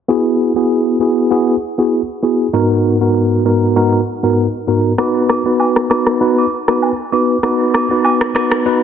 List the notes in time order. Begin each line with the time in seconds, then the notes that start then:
0.08 B3 E4 F#4 G#4
0.56 B3 E4 F#4 G#4
1.00 B3 E4 F#4 G#4
1.31 B3 E4 F#4 G#4
1.78 B3 E4 F#4 G#4
2.23 B3 E4 F#4 G#4
2.53 G#2 B3 D#4 F#4 A#4
3.01 G#2 B3 D#4 F#4 A#4
3.45 G#2 B3 D#4 F#4 A#4
3.76 G#2 B3 D#4 F#4 A#4
4.23 G#2 B3 D#4 F#4 A#4
4.67 G#2 B3 D#4 F#4 A#4
4.98 B3 D#4 F#4 B4, cross-stick, high agogo
5.29 cross-stick, high agogo
5.46 B3 D#4 F#4 B4
5.60 high agogo, low woodblock
5.76 cross-stick
5.90 B3 D#4 F#4 B4, cross-stick, high agogo
6.07 cross-stick
6.21 B3 D#4 F#4 B4
6.38 high agogo
6.68 B3 D#4 F#4 B4, cross-stick, high agogo
6.82 low woodblock
7.12 B3 D#4 F#4 B4, high agogo
7.43 B3 D#4 F#4 B4, cross-stick, high agogo
7.74 cross-stick, high agogo
7.90 B3 D#4 F#4 B4
8.04 high agogo, low woodblock
8.21 cross-stick
8.35 B3 D#4 F#4 B4, cross-stick, high agogo
8.52 cross-stick
8.65 B3 D#4 F#4 B4